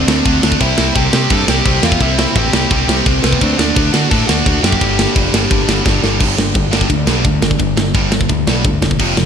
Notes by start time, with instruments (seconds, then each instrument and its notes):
Already playing: overdriven electric guitar C4 C5
0.07 picked electric bass D2, distorted electric guitar D3 A3 D4, snare
0.24 picked electric bass D2, distorted electric guitar D3 A3 D4, kick, crash
0.42 picked electric bass D2, distorted electric guitar D3 A3 D4, snare
0.52 kick
0.59 picked electric bass C2, distorted electric guitar C3 G3 C4, overdriven electric guitar E4 E5, kick, crash
0.77 picked electric bass C2, distorted electric guitar C3 G3 C4, snare
0.94 picked electric bass C2, distorted electric guitar C3 G3 C4, overdriven electric guitar G4 G5, kick, crash
1.12 distorted electric guitar C3 G3 C4, picked electric bass C3, snare
1.30 picked electric bass G2, distorted electric guitar C3 G3 C4, overdriven electric guitar A4 A5, kick, crash
1.48 picked electric bass C2, distorted electric guitar C3 G3 C4, overdriven electric guitar G4 G5, snare
1.64 picked electric bass C2, distorted electric guitar C3 G3 C4, kick, crash
1.82 picked electric bass E2, distorted electric guitar C3 G3 C4, overdriven electric guitar F4 F5, snare
1.92 kick
2.00 picked electric bass C2, distorted electric guitar C3 G3 C4, overdriven electric guitar E4 E5, kick, crash
2.18 distorted electric guitar C3 G3 C4, snare
2.35 picked electric bass A1, distorted electric guitar C3 G3 C4, overdriven electric guitar G4 G5, kick, crash
2.53 picked electric bass C2, distorted electric guitar C3 G3 C4, snare
2.70 picked electric bass C2, distorted electric guitar C3 G3 C4, overdriven electric guitar G4 G5, kick, crash
2.88 picked electric bass C2, distorted electric guitar C3 G3 C4, snare
3.05 picked electric bass C2, distorted electric guitar C3 G3 C4, kick, crash
3.23 picked electric bass C2, distorted electric guitar C3 G3 C4, overdriven electric guitar B3 B4, snare
3.33 kick
3.40 picked electric bass D2, distorted electric guitar D3 A3 D4, overdriven electric guitar C4 C5, kick, crash
3.58 picked electric bass D2, distorted electric guitar D3 A3 D4, overdriven electric guitar D4 D5, snare
3.75 picked electric bass D2, distorted electric guitar D3 A3 D4, kick, crash
3.93 distorted electric guitar D3 A3 D4, picked electric bass D3, overdriven electric guitar F#4 F#5, snare
4.11 picked electric bass A2, distorted electric guitar D3 A3 D4, overdriven electric guitar A4 A5, kick, crash
4.27 picked electric bass D2, distorted electric guitar D3 A3 D4, overdriven electric guitar F#4 F#5, snare
4.46 picked electric bass D2, distorted electric guitar D3 A3 D4, kick, crash
4.63 picked electric bass F#2, distorted electric guitar D3 A3 D4, overdriven electric guitar G4 G5, snare
4.72 kick
4.80 picked electric bass G1, distorted electric guitar G2 D3 G3, kick, crash
4.97 distorted electric guitar G2 D3 G3, snare
5.15 picked electric bass F1, distorted electric guitar G2 D3 G3, kick, crash
5.33 picked electric bass G1, distorted electric guitar G2 D3 G3, snare
5.50 picked electric bass G1, distorted electric guitar G2 D3 G3, kick, crash
5.67 picked electric bass G1, distorted electric guitar G2 D3 G3, snare
5.84 picked electric bass G1, distorted electric guitar G2 D3 G3, kick, snare
6.02 picked electric bass G1, distorted electric guitar G2 D3 G3, snare
6.19 picked electric bass G1, distorted electric guitar G2 D3 G3, kick, crash
6.37 picked electric bass G1, distorted electric guitar G2 D3, snare
6.54 picked electric bass G1, distorted electric guitar G2 D3, kick, ride
6.71 distorted electric guitar G2 D3 G3, snare
6.81 kick
6.89 picked electric bass D2, distorted electric guitar G2 D3, kick, ride
7.06 picked electric bass B1, distorted electric guitar G2 D3 G3, snare
7.24 picked electric bass D2, distorted electric guitar G2 D3, kick, ride
7.41 picked electric bass G1, distorted electric guitar G2 D3, snare
7.51 kick
7.59 picked electric bass G1, distorted electric guitar G2 D3, kick, ride
7.77 picked electric bass G1, distorted electric guitar G2 D3, snare
7.94 picked electric bass G1, distorted electric guitar G2 D3 G3, kick, ride
8.12 distorted electric guitar G2 D3, snare
8.21 kick
8.29 picked electric bass D2, distorted electric guitar G2 D3, kick, ride
8.47 picked electric bass B1, distorted electric guitar G2 D3 G3, snare
8.64 picked electric bass D2, distorted electric guitar G2 D3, kick, ride
8.81 picked electric bass E1, distorted electric guitar G2 D3, snare
8.91 kick
8.99 picked electric bass F1, distorted electric guitar F2 C3 F3, kick, crash
9.16 picked electric bass F1, distorted electric guitar F2 C3, snare